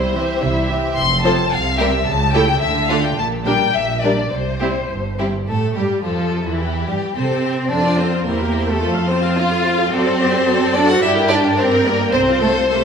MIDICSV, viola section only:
0, 0, Header, 1, 2, 480
1, 0, Start_track
1, 0, Key_signature, -1, "major"
1, 0, Tempo, 553506
1, 841, Time_signature, 2, 2, 24, 8
1, 2763, Tempo, 569260
1, 5643, Tempo, 555042
1, 11038, End_track
2, 0, Start_track
2, 0, Title_t, "Viola section"
2, 0, Program_c, 0, 48
2, 0, Note_on_c, 0, 55, 46
2, 0, Note_on_c, 0, 64, 44
2, 106, Note_off_c, 0, 64, 0
2, 107, Note_off_c, 0, 55, 0
2, 120, Note_on_c, 0, 52, 43
2, 121, Note_on_c, 0, 60, 46
2, 359, Note_on_c, 0, 55, 45
2, 361, Note_off_c, 0, 52, 0
2, 361, Note_on_c, 0, 64, 44
2, 362, Note_off_c, 0, 60, 0
2, 600, Note_off_c, 0, 55, 0
2, 601, Note_off_c, 0, 64, 0
2, 601, Note_on_c, 0, 52, 41
2, 604, Note_on_c, 0, 60, 43
2, 841, Note_off_c, 0, 52, 0
2, 842, Note_off_c, 0, 60, 0
2, 1080, Note_on_c, 0, 53, 57
2, 1080, Note_on_c, 0, 60, 55
2, 1192, Note_off_c, 0, 53, 0
2, 1192, Note_off_c, 0, 60, 0
2, 1555, Note_on_c, 0, 55, 54
2, 1558, Note_on_c, 0, 60, 56
2, 1669, Note_off_c, 0, 55, 0
2, 1670, Note_off_c, 0, 60, 0
2, 2033, Note_on_c, 0, 64, 54
2, 2034, Note_on_c, 0, 57, 56
2, 2148, Note_off_c, 0, 57, 0
2, 2148, Note_off_c, 0, 64, 0
2, 2515, Note_on_c, 0, 62, 56
2, 2517, Note_on_c, 0, 57, 58
2, 2631, Note_off_c, 0, 62, 0
2, 2632, Note_off_c, 0, 57, 0
2, 2994, Note_on_c, 0, 62, 50
2, 2996, Note_on_c, 0, 55, 52
2, 3109, Note_off_c, 0, 62, 0
2, 3110, Note_off_c, 0, 55, 0
2, 3482, Note_on_c, 0, 55, 40
2, 3482, Note_on_c, 0, 62, 42
2, 3597, Note_off_c, 0, 55, 0
2, 3597, Note_off_c, 0, 62, 0
2, 3970, Note_on_c, 0, 55, 37
2, 3972, Note_on_c, 0, 60, 44
2, 4084, Note_off_c, 0, 55, 0
2, 4086, Note_off_c, 0, 60, 0
2, 4454, Note_on_c, 0, 60, 37
2, 4455, Note_on_c, 0, 55, 35
2, 4568, Note_off_c, 0, 55, 0
2, 4568, Note_off_c, 0, 60, 0
2, 4696, Note_on_c, 0, 57, 54
2, 4917, Note_off_c, 0, 57, 0
2, 4930, Note_on_c, 0, 55, 62
2, 5168, Note_on_c, 0, 53, 52
2, 5169, Note_off_c, 0, 55, 0
2, 5518, Note_off_c, 0, 53, 0
2, 5518, Note_on_c, 0, 52, 56
2, 5873, Note_on_c, 0, 55, 56
2, 5874, Note_off_c, 0, 52, 0
2, 5942, Note_off_c, 0, 55, 0
2, 6121, Note_on_c, 0, 60, 61
2, 6596, Note_off_c, 0, 60, 0
2, 6610, Note_on_c, 0, 60, 44
2, 6610, Note_on_c, 0, 69, 45
2, 6720, Note_on_c, 0, 72, 45
2, 6721, Note_off_c, 0, 60, 0
2, 6721, Note_off_c, 0, 69, 0
2, 6721, Note_on_c, 0, 65, 46
2, 6838, Note_on_c, 0, 60, 45
2, 6839, Note_on_c, 0, 69, 45
2, 6844, Note_off_c, 0, 65, 0
2, 6844, Note_off_c, 0, 72, 0
2, 6960, Note_on_c, 0, 65, 41
2, 6961, Note_on_c, 0, 72, 45
2, 6963, Note_off_c, 0, 60, 0
2, 6963, Note_off_c, 0, 69, 0
2, 7074, Note_off_c, 0, 72, 0
2, 7083, Note_off_c, 0, 65, 0
2, 7084, Note_on_c, 0, 64, 46
2, 7084, Note_on_c, 0, 72, 49
2, 7194, Note_on_c, 0, 67, 46
2, 7196, Note_off_c, 0, 64, 0
2, 7196, Note_off_c, 0, 72, 0
2, 7199, Note_on_c, 0, 70, 46
2, 7306, Note_on_c, 0, 64, 47
2, 7309, Note_on_c, 0, 72, 43
2, 7320, Note_off_c, 0, 67, 0
2, 7322, Note_off_c, 0, 70, 0
2, 7433, Note_on_c, 0, 67, 47
2, 7435, Note_off_c, 0, 64, 0
2, 7435, Note_on_c, 0, 70, 47
2, 7437, Note_off_c, 0, 72, 0
2, 7553, Note_on_c, 0, 65, 51
2, 7554, Note_on_c, 0, 72, 51
2, 7559, Note_off_c, 0, 67, 0
2, 7560, Note_off_c, 0, 70, 0
2, 7671, Note_off_c, 0, 65, 0
2, 7672, Note_off_c, 0, 72, 0
2, 7674, Note_on_c, 0, 69, 49
2, 7678, Note_on_c, 0, 77, 50
2, 7797, Note_on_c, 0, 72, 56
2, 7798, Note_on_c, 0, 65, 50
2, 7801, Note_off_c, 0, 69, 0
2, 7803, Note_off_c, 0, 77, 0
2, 7914, Note_on_c, 0, 77, 51
2, 7917, Note_on_c, 0, 69, 48
2, 7922, Note_off_c, 0, 72, 0
2, 7923, Note_off_c, 0, 65, 0
2, 8037, Note_on_c, 0, 65, 52
2, 8038, Note_on_c, 0, 72, 49
2, 8041, Note_off_c, 0, 77, 0
2, 8042, Note_off_c, 0, 69, 0
2, 8149, Note_on_c, 0, 77, 49
2, 8150, Note_on_c, 0, 69, 51
2, 8153, Note_off_c, 0, 65, 0
2, 8154, Note_off_c, 0, 72, 0
2, 8274, Note_on_c, 0, 65, 50
2, 8275, Note_on_c, 0, 72, 48
2, 8278, Note_off_c, 0, 69, 0
2, 8278, Note_off_c, 0, 77, 0
2, 8400, Note_off_c, 0, 65, 0
2, 8400, Note_off_c, 0, 72, 0
2, 8400, Note_on_c, 0, 77, 54
2, 8401, Note_on_c, 0, 69, 51
2, 8517, Note_on_c, 0, 66, 55
2, 8520, Note_on_c, 0, 74, 52
2, 8522, Note_off_c, 0, 69, 0
2, 8522, Note_off_c, 0, 77, 0
2, 8631, Note_off_c, 0, 66, 0
2, 8632, Note_off_c, 0, 74, 0
2, 8633, Note_on_c, 0, 72, 51
2, 8635, Note_on_c, 0, 69, 53
2, 8751, Note_on_c, 0, 66, 52
2, 8752, Note_on_c, 0, 74, 57
2, 8756, Note_off_c, 0, 72, 0
2, 8757, Note_off_c, 0, 69, 0
2, 8868, Note_on_c, 0, 69, 54
2, 8868, Note_on_c, 0, 72, 51
2, 8874, Note_off_c, 0, 66, 0
2, 8874, Note_off_c, 0, 74, 0
2, 8989, Note_on_c, 0, 66, 60
2, 8992, Note_off_c, 0, 69, 0
2, 8992, Note_off_c, 0, 72, 0
2, 8993, Note_on_c, 0, 74, 57
2, 9104, Note_off_c, 0, 66, 0
2, 9106, Note_off_c, 0, 74, 0
2, 9109, Note_on_c, 0, 72, 56
2, 9111, Note_on_c, 0, 69, 53
2, 9224, Note_on_c, 0, 74, 50
2, 9226, Note_on_c, 0, 66, 57
2, 9232, Note_off_c, 0, 72, 0
2, 9233, Note_off_c, 0, 69, 0
2, 9349, Note_off_c, 0, 74, 0
2, 9350, Note_off_c, 0, 66, 0
2, 9356, Note_on_c, 0, 72, 57
2, 9358, Note_on_c, 0, 69, 52
2, 9468, Note_on_c, 0, 74, 55
2, 9469, Note_on_c, 0, 67, 55
2, 9475, Note_off_c, 0, 72, 0
2, 9476, Note_off_c, 0, 69, 0
2, 9582, Note_off_c, 0, 74, 0
2, 9583, Note_off_c, 0, 67, 0
2, 9589, Note_on_c, 0, 79, 49
2, 9590, Note_on_c, 0, 70, 52
2, 9706, Note_on_c, 0, 67, 53
2, 9707, Note_on_c, 0, 74, 54
2, 9712, Note_off_c, 0, 70, 0
2, 9712, Note_off_c, 0, 79, 0
2, 9830, Note_off_c, 0, 67, 0
2, 9830, Note_off_c, 0, 74, 0
2, 9832, Note_on_c, 0, 70, 48
2, 9832, Note_on_c, 0, 79, 51
2, 9952, Note_on_c, 0, 67, 56
2, 9953, Note_off_c, 0, 70, 0
2, 9953, Note_off_c, 0, 79, 0
2, 9955, Note_on_c, 0, 74, 57
2, 10065, Note_off_c, 0, 67, 0
2, 10066, Note_off_c, 0, 74, 0
2, 10074, Note_on_c, 0, 70, 51
2, 10074, Note_on_c, 0, 79, 53
2, 10194, Note_off_c, 0, 70, 0
2, 10194, Note_off_c, 0, 79, 0
2, 10199, Note_on_c, 0, 74, 53
2, 10200, Note_on_c, 0, 67, 54
2, 10310, Note_on_c, 0, 79, 56
2, 10313, Note_on_c, 0, 70, 49
2, 10317, Note_off_c, 0, 67, 0
2, 10317, Note_off_c, 0, 74, 0
2, 10431, Note_on_c, 0, 69, 61
2, 10432, Note_on_c, 0, 60, 54
2, 10433, Note_off_c, 0, 79, 0
2, 10434, Note_off_c, 0, 70, 0
2, 10545, Note_off_c, 0, 69, 0
2, 10546, Note_off_c, 0, 60, 0
2, 10551, Note_on_c, 0, 65, 55
2, 10551, Note_on_c, 0, 72, 51
2, 10673, Note_on_c, 0, 60, 51
2, 10673, Note_on_c, 0, 69, 54
2, 10674, Note_off_c, 0, 72, 0
2, 10675, Note_off_c, 0, 65, 0
2, 10797, Note_off_c, 0, 60, 0
2, 10797, Note_off_c, 0, 69, 0
2, 10797, Note_on_c, 0, 65, 51
2, 10798, Note_on_c, 0, 72, 46
2, 10920, Note_off_c, 0, 65, 0
2, 10920, Note_off_c, 0, 72, 0
2, 10922, Note_on_c, 0, 67, 53
2, 10923, Note_on_c, 0, 70, 47
2, 11036, Note_off_c, 0, 67, 0
2, 11036, Note_off_c, 0, 70, 0
2, 11038, End_track
0, 0, End_of_file